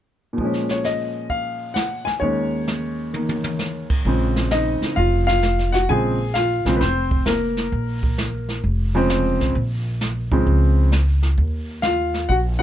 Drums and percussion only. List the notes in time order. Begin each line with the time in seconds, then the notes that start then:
0.38 brush sweep, kick
0.53 snare
0.69 snare
0.84 snare, hi-hat pedal
1.30 brush sweep, kick
1.75 snare, hi-hat pedal
2.07 snare
2.22 brush sweep, kick
2.67 snare, hi-hat pedal
3.14 high tom
3.29 high tom
3.44 high tom
3.59 snare, hi-hat pedal
3.90 kick, crash
4.05 brush sweep, kick
4.36 snare
4.51 snare, hi-hat pedal
4.82 snare
4.97 brush sweep, kick
5.28 snare
5.42 snare, hi-hat pedal
5.59 snare
5.74 snare
5.89 brush sweep, kick
6.35 snare, hi-hat pedal
6.66 snare
6.81 brush sweep, kick, snare
7.11 kick
7.25 snare, hi-hat pedal
7.57 snare
7.72 brush sweep, kick
8.03 kick
8.18 snare, hi-hat pedal
8.49 snare
8.64 brush sweep, kick
9.09 snare, hi-hat pedal
9.41 snare
9.55 brush sweep, kick
10.01 snare, hi-hat pedal
10.32 kick
10.47 brush sweep, kick
10.92 snare, hi-hat pedal
11.22 snare
11.37 brush sweep, kick
11.82 snare, hi-hat pedal
12.14 snare
12.29 brush sweep, kick